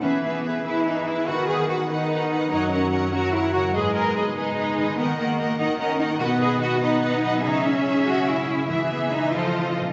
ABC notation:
X:1
M:6/8
L:1/8
Q:3/8=97
K:Elyd
V:1 name="Violin section"
e e e e e e | f f f f f f | f f f f f f | d d d d d d |
f f f f f f | f f f f f f | e6 | e3 _e2 z |]
V:2 name="Violin section"
[GB] [GB] [GB] [GB] [GB] [GB] | B B B B B B | [Ac] [Ac] [Ac] [Ac] [Ac] [Ac] | [GB] [GB] [GB] [GB] [GB] [GB] |
[Ad] [Ad] [Ad] [Ad] [Ad] [Ad] | [Bd] [Bd] [Bd] [Bd] [Bd] [Bd] | [Ge]6 | [Ge]3 [=A=c]2 z |]
V:3 name="Cello section"
C B,2 E D E | F G F D3 | D C2 F E F | G A G D3 |
B, A,2 D C D | F G F D3 | D C2 F E2 | E B, D =F3 |]
V:4 name="Harp"
E, B, G B B, E | D, B, F B B, D | F,, C F A C C, | G,, B, D G B, D, |
D, D F A D A, | B,, B, D F B, F, | C, G, E G, C G, | E, E E =F, =C [C_E] |]
V:5 name="Viola section" clef=bass
E,3 E,3 | D,3 D,3 | F,3 F,3 | G,3 G,3 |
D,3 D,3 | B,3 B,3 | C6 | E,3 =F,2 z |]